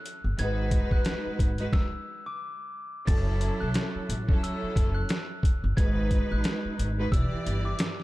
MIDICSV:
0, 0, Header, 1, 6, 480
1, 0, Start_track
1, 0, Tempo, 674157
1, 270, Time_signature, 4, 2, 24, 8
1, 5720, End_track
2, 0, Start_track
2, 0, Title_t, "Glockenspiel"
2, 0, Program_c, 0, 9
2, 279, Note_on_c, 0, 92, 103
2, 633, Note_off_c, 0, 92, 0
2, 658, Note_on_c, 0, 90, 76
2, 1205, Note_off_c, 0, 90, 0
2, 1230, Note_on_c, 0, 88, 90
2, 1588, Note_off_c, 0, 88, 0
2, 1612, Note_on_c, 0, 86, 76
2, 2162, Note_off_c, 0, 86, 0
2, 2187, Note_on_c, 0, 93, 100
2, 2547, Note_off_c, 0, 93, 0
2, 2566, Note_on_c, 0, 90, 76
2, 3119, Note_off_c, 0, 90, 0
2, 3157, Note_on_c, 0, 88, 81
2, 3512, Note_off_c, 0, 88, 0
2, 3521, Note_on_c, 0, 90, 83
2, 3741, Note_off_c, 0, 90, 0
2, 4107, Note_on_c, 0, 92, 104
2, 4466, Note_off_c, 0, 92, 0
2, 4498, Note_on_c, 0, 90, 81
2, 5046, Note_off_c, 0, 90, 0
2, 5069, Note_on_c, 0, 88, 97
2, 5427, Note_off_c, 0, 88, 0
2, 5448, Note_on_c, 0, 86, 72
2, 5720, Note_off_c, 0, 86, 0
2, 5720, End_track
3, 0, Start_track
3, 0, Title_t, "String section"
3, 0, Program_c, 1, 48
3, 264, Note_on_c, 1, 56, 102
3, 271, Note_on_c, 1, 63, 98
3, 278, Note_on_c, 1, 66, 97
3, 285, Note_on_c, 1, 71, 113
3, 1049, Note_off_c, 1, 56, 0
3, 1052, Note_off_c, 1, 63, 0
3, 1056, Note_off_c, 1, 66, 0
3, 1059, Note_off_c, 1, 71, 0
3, 1123, Note_on_c, 1, 56, 92
3, 1130, Note_on_c, 1, 63, 86
3, 1136, Note_on_c, 1, 66, 84
3, 1143, Note_on_c, 1, 71, 104
3, 1226, Note_off_c, 1, 56, 0
3, 1230, Note_off_c, 1, 63, 0
3, 1233, Note_off_c, 1, 66, 0
3, 1236, Note_off_c, 1, 71, 0
3, 2172, Note_on_c, 1, 54, 111
3, 2179, Note_on_c, 1, 61, 88
3, 2186, Note_on_c, 1, 64, 99
3, 2193, Note_on_c, 1, 69, 108
3, 2963, Note_off_c, 1, 54, 0
3, 2967, Note_off_c, 1, 61, 0
3, 2970, Note_off_c, 1, 64, 0
3, 2974, Note_off_c, 1, 69, 0
3, 3041, Note_on_c, 1, 54, 106
3, 3047, Note_on_c, 1, 61, 99
3, 3054, Note_on_c, 1, 64, 96
3, 3061, Note_on_c, 1, 69, 107
3, 3809, Note_off_c, 1, 54, 0
3, 3813, Note_off_c, 1, 61, 0
3, 3816, Note_off_c, 1, 64, 0
3, 3820, Note_off_c, 1, 69, 0
3, 4105, Note_on_c, 1, 56, 105
3, 4111, Note_on_c, 1, 63, 103
3, 4117, Note_on_c, 1, 66, 96
3, 4125, Note_on_c, 1, 71, 113
3, 4889, Note_off_c, 1, 56, 0
3, 4893, Note_off_c, 1, 63, 0
3, 4896, Note_off_c, 1, 66, 0
3, 4899, Note_off_c, 1, 71, 0
3, 4964, Note_on_c, 1, 56, 96
3, 4972, Note_on_c, 1, 63, 86
3, 4978, Note_on_c, 1, 66, 88
3, 4985, Note_on_c, 1, 71, 108
3, 5059, Note_on_c, 1, 52, 112
3, 5066, Note_on_c, 1, 64, 91
3, 5067, Note_off_c, 1, 56, 0
3, 5071, Note_off_c, 1, 63, 0
3, 5073, Note_on_c, 1, 67, 94
3, 5074, Note_off_c, 1, 66, 0
3, 5077, Note_off_c, 1, 71, 0
3, 5080, Note_on_c, 1, 74, 106
3, 5720, Note_off_c, 1, 52, 0
3, 5720, Note_off_c, 1, 64, 0
3, 5720, Note_off_c, 1, 67, 0
3, 5720, Note_off_c, 1, 74, 0
3, 5720, End_track
4, 0, Start_track
4, 0, Title_t, "Upright bass"
4, 0, Program_c, 2, 32
4, 173, Note_on_c, 2, 31, 86
4, 247, Note_off_c, 2, 31, 0
4, 273, Note_on_c, 2, 32, 98
4, 558, Note_off_c, 2, 32, 0
4, 651, Note_on_c, 2, 33, 89
4, 726, Note_off_c, 2, 33, 0
4, 993, Note_on_c, 2, 32, 90
4, 1172, Note_off_c, 2, 32, 0
4, 2191, Note_on_c, 2, 30, 106
4, 2477, Note_off_c, 2, 30, 0
4, 2574, Note_on_c, 2, 35, 90
4, 2647, Note_off_c, 2, 35, 0
4, 2913, Note_on_c, 2, 33, 94
4, 3092, Note_off_c, 2, 33, 0
4, 3391, Note_on_c, 2, 30, 93
4, 3571, Note_off_c, 2, 30, 0
4, 4014, Note_on_c, 2, 31, 88
4, 4087, Note_off_c, 2, 31, 0
4, 4112, Note_on_c, 2, 32, 100
4, 4397, Note_off_c, 2, 32, 0
4, 4494, Note_on_c, 2, 33, 92
4, 4567, Note_off_c, 2, 33, 0
4, 4833, Note_on_c, 2, 32, 90
4, 5013, Note_off_c, 2, 32, 0
4, 5070, Note_on_c, 2, 28, 99
4, 5176, Note_off_c, 2, 28, 0
4, 5314, Note_on_c, 2, 31, 95
4, 5493, Note_off_c, 2, 31, 0
4, 5720, End_track
5, 0, Start_track
5, 0, Title_t, "Muted upright bass strokes"
5, 893, Note_on_c, 9, 29, 46
5, 964, Note_off_c, 9, 29, 0
5, 2814, Note_on_c, 9, 29, 50
5, 2885, Note_off_c, 9, 29, 0
5, 3294, Note_on_c, 9, 29, 47
5, 3365, Note_off_c, 9, 29, 0
5, 4734, Note_on_c, 9, 29, 48
5, 4805, Note_off_c, 9, 29, 0
5, 5214, Note_on_c, 9, 29, 46
5, 5286, Note_off_c, 9, 29, 0
5, 5720, End_track
6, 0, Start_track
6, 0, Title_t, "Drums"
6, 40, Note_on_c, 9, 42, 71
6, 111, Note_off_c, 9, 42, 0
6, 275, Note_on_c, 9, 42, 86
6, 346, Note_off_c, 9, 42, 0
6, 508, Note_on_c, 9, 42, 72
6, 509, Note_on_c, 9, 36, 91
6, 579, Note_off_c, 9, 42, 0
6, 580, Note_off_c, 9, 36, 0
6, 649, Note_on_c, 9, 36, 91
6, 721, Note_off_c, 9, 36, 0
6, 745, Note_on_c, 9, 42, 85
6, 754, Note_on_c, 9, 38, 110
6, 816, Note_off_c, 9, 42, 0
6, 825, Note_off_c, 9, 38, 0
6, 991, Note_on_c, 9, 36, 91
6, 997, Note_on_c, 9, 42, 77
6, 1062, Note_off_c, 9, 36, 0
6, 1068, Note_off_c, 9, 42, 0
6, 1127, Note_on_c, 9, 42, 48
6, 1198, Note_off_c, 9, 42, 0
6, 1229, Note_on_c, 9, 36, 110
6, 1234, Note_on_c, 9, 38, 88
6, 1301, Note_off_c, 9, 36, 0
6, 1305, Note_off_c, 9, 38, 0
6, 2189, Note_on_c, 9, 49, 98
6, 2190, Note_on_c, 9, 36, 124
6, 2195, Note_on_c, 9, 42, 89
6, 2260, Note_off_c, 9, 49, 0
6, 2261, Note_off_c, 9, 36, 0
6, 2266, Note_off_c, 9, 42, 0
6, 2427, Note_on_c, 9, 42, 73
6, 2498, Note_off_c, 9, 42, 0
6, 2665, Note_on_c, 9, 42, 89
6, 2673, Note_on_c, 9, 38, 114
6, 2736, Note_off_c, 9, 42, 0
6, 2744, Note_off_c, 9, 38, 0
6, 2917, Note_on_c, 9, 42, 84
6, 2988, Note_off_c, 9, 42, 0
6, 3051, Note_on_c, 9, 36, 99
6, 3123, Note_off_c, 9, 36, 0
6, 3160, Note_on_c, 9, 42, 87
6, 3231, Note_off_c, 9, 42, 0
6, 3390, Note_on_c, 9, 36, 98
6, 3394, Note_on_c, 9, 38, 36
6, 3396, Note_on_c, 9, 42, 75
6, 3461, Note_off_c, 9, 36, 0
6, 3465, Note_off_c, 9, 38, 0
6, 3467, Note_off_c, 9, 42, 0
6, 3624, Note_on_c, 9, 42, 87
6, 3634, Note_on_c, 9, 38, 122
6, 3696, Note_off_c, 9, 42, 0
6, 3706, Note_off_c, 9, 38, 0
6, 3867, Note_on_c, 9, 36, 102
6, 3880, Note_on_c, 9, 42, 73
6, 3939, Note_off_c, 9, 36, 0
6, 3951, Note_off_c, 9, 42, 0
6, 4110, Note_on_c, 9, 36, 122
6, 4116, Note_on_c, 9, 42, 91
6, 4182, Note_off_c, 9, 36, 0
6, 4187, Note_off_c, 9, 42, 0
6, 4349, Note_on_c, 9, 36, 93
6, 4349, Note_on_c, 9, 42, 69
6, 4420, Note_off_c, 9, 36, 0
6, 4420, Note_off_c, 9, 42, 0
6, 4585, Note_on_c, 9, 42, 90
6, 4593, Note_on_c, 9, 38, 115
6, 4656, Note_off_c, 9, 42, 0
6, 4665, Note_off_c, 9, 38, 0
6, 4837, Note_on_c, 9, 42, 79
6, 4908, Note_off_c, 9, 42, 0
6, 5069, Note_on_c, 9, 36, 90
6, 5080, Note_on_c, 9, 42, 87
6, 5140, Note_off_c, 9, 36, 0
6, 5151, Note_off_c, 9, 42, 0
6, 5315, Note_on_c, 9, 42, 72
6, 5386, Note_off_c, 9, 42, 0
6, 5544, Note_on_c, 9, 42, 87
6, 5554, Note_on_c, 9, 38, 118
6, 5615, Note_off_c, 9, 42, 0
6, 5626, Note_off_c, 9, 38, 0
6, 5694, Note_on_c, 9, 38, 35
6, 5720, Note_off_c, 9, 38, 0
6, 5720, End_track
0, 0, End_of_file